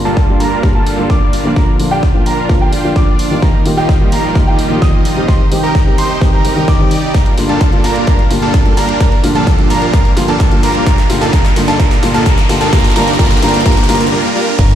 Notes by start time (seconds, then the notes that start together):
Already playing: G2 A#2 D3 G3 A#3 D4 F4
0.05 G3 A#3 D4 F4 A4 A5
0.17 kick, snare
0.28 G2 D3 G3 A#3 F4
0.40 G3 A#3 D4 F4 A#4 A#5, open hi-hat
0.63 G2 D3 G3 A#3 F4, kick, snare
0.75 G3 A#3 D4 F4 A4 A5
0.87 open hi-hat
0.97 G2 D3 G3 A#3 F4
1.10 G3 A#3 D4 F4 D5 D6, kick, snare
1.33 open hi-hat
1.44 D3 F3 A#3 F4
1.56 F3 D4 F4 A#4 A#5, kick, snare
1.79 D3 F3 A#3 F4, open hi-hat
1.91 D4 F4 G4 G5
2.03 kick, snare
2.14 D3 F3 A#3 F4
2.26 D4 F4 A#4 A#5, open hi-hat
2.49 D3 F3 A#3 F4, kick, snare
2.61 D4 F4 G4 G5
2.73 open hi-hat
2.84 D3 F3 A#3 F4
2.96 D4 F4 D5 D6, kick, snare
3.19 open hi-hat
3.30 D#3 G3 A#3 F4
3.42 G3 A#3 D#4 F4 G4 A#4 A#5, kick, snare
3.65 D#3 G3 A#3 F4, open hi-hat
3.77 G3 A#3 D#4 F4 G4 G5
3.89 kick, snare
4.00 D#3 G3 A#3 F4
4.12 G3 A#3 D#4 F4 A#4 A#5, open hi-hat
4.35 D#3 G3 A#3 F4, kick, snare
4.47 G3 A#3 D#4 F4 G4 G5
4.59 open hi-hat
4.70 D#3 G3 A#3 F4
4.82 G3 A#3 D#4 F4 D#5 D#6, kick, snare
5.05 open hi-hat
5.16 D#3 G3 C4 G4
5.28 C3 G3 D#4 G4 C5 C6, kick, snare
5.51 D#3 G3 C4 G4, open hi-hat
5.63 D#4 G4 A#4 A#5
5.75 kick, snare
5.86 D#3 G3 C4 G4
5.98 D#4 G4 C5 C6, open hi-hat
6.21 D#3 G3 C4 G4, kick, snare
6.33 D#4 G4 A#4 A#5
6.44 D#3 G3 C4 G4, open hi-hat
6.56 D#3 G3 C4 G4
6.68 D#4 G4 D5 D6, kick, snare
6.79 D#3 G3 C4 G4
6.91 open hi-hat
7.14 A#2 G3 A#3 D4 F4 A#4 A#5, kick, snare, closed hi-hat, riser
7.26 closed hi-hat
7.37 G2 D3 G3 A#3 F4, snare, open hi-hat
7.49 G3 A#3 D4 F4 A4 A5, closed hi-hat
7.61 kick, snare, closed hi-hat
7.72 G2 D3 G3 A#3 F4, closed hi-hat
7.84 G3 A#3 D4 F4 A#4 A#5, snare, open hi-hat
7.96 closed hi-hat
8.07 G3 A#3 D4 F4 A#4 A#5, kick, snare, closed hi-hat
8.19 closed hi-hat
8.30 G2 D3 G3 A#3 F4, snare, open hi-hat
8.42 G3 A#3 D4 F4 A4 A5, closed hi-hat
8.54 kick, snare, closed hi-hat
8.65 G2 D3 G3 A#3 F4, closed hi-hat
8.77 G3 A#3 D4 F4 A#4 A#5, snare, open hi-hat
8.89 closed hi-hat
9.00 A#2 F3 G3 A#3 D4 F4 A#4 A#5, kick, snare, closed hi-hat
9.12 closed hi-hat
9.23 G2 D3 G3 A#3 F4, snare, open hi-hat
9.35 G3 A#3 D4 F4 A4 A5, closed hi-hat
9.47 kick, snare, closed hi-hat
9.58 G2 D3 G3 A#3 F4, closed hi-hat
9.70 G3 A#3 D4 F4 A#4 A#5, snare, open hi-hat
9.82 closed hi-hat
9.93 G3 A#3 D4 F4 A#4 A#5, kick, snare, closed hi-hat
10.05 closed hi-hat
10.16 G2 D3 G3 A#3 F4, snare, open hi-hat
10.28 G3 A#3 D4 F4 A4 A5, closed hi-hat
10.40 kick, snare, closed hi-hat
10.51 G2 D3 G3 A#3 F4, closed hi-hat
10.63 G3 A#3 D4 F4 A#4 A#5, snare, open hi-hat
10.75 closed hi-hat
10.86 A#2 G3 A#3 D4 D#4 F4 A#4 A#5, kick, snare, closed hi-hat
10.98 snare, closed hi-hat
11.09 G2 D3 G3 A#3 F4, snare, open hi-hat
11.21 G3 A#3 D4 F4 A4 A5, snare, closed hi-hat
11.33 G3 A#3 D4 F4 A#4 A#5, kick, snare, closed hi-hat
11.45 snare, closed hi-hat
11.56 G2 D3 G3 A#3 F4, snare, open hi-hat
11.68 G3 A#3 D4 F4 A4 A5, snare, closed hi-hat
11.79 G3 A#3 D4 F4 A#4, kick, snare, closed hi-hat
11.91 snare, closed hi-hat
12.02 G2 D3 G3 A#3 F4, snare, open hi-hat
12.14 G3 A#3 D4 F4 A4 A5, snare, closed hi-hat
12.26 G3 A#3 D4 F4 A#4 A#5, kick, snare, closed hi-hat
12.38 snare, closed hi-hat
12.49 G2 D3 G3 A#3 F4, snare, open hi-hat
12.61 G3 A#3 D4 F4 A4 A5, snare, closed hi-hat
12.72 G2 C3 D3 G3 A#3 D4 F4 G4 A#4 A#5, kick, snare, closed hi-hat
12.79 snare
12.84 snare, closed hi-hat
12.90 snare
12.95 G2 D3 G3 A#3 D4 F4 A#4 A#5, snare, open hi-hat
13.02 snare
13.08 snare, closed hi-hat
13.13 snare
13.19 G2 D3 G3 A#3 D4 F4 A#4 A#5, kick, snare, closed hi-hat
13.25 snare
13.31 snare, closed hi-hat
13.37 snare
13.42 G2 D3 G3 A#3 D4 F4 A#4 A#5, snare, open hi-hat
13.48 snare
13.54 snare, closed hi-hat
13.60 snare
13.65 G2 D3 G3 A#3 D4 F4 A#4 A#5, kick, snare, closed hi-hat
13.72 snare
13.77 snare, closed hi-hat
13.83 snare
13.88 G2 D3 G3 A#3 D4 F4 A#4 A#5, snare, open hi-hat
13.95 snare
14.01 snare, closed hi-hat
14.06 snare
14.12 G3 A#3 D4 F4 A#4
14.35 G3 A#3 D4 F4 A#4
14.59 G1 D3 G3 A#3 D4 F4 A#4 A#5, kick, closed hi-hat, crash
14.70 closed hi-hat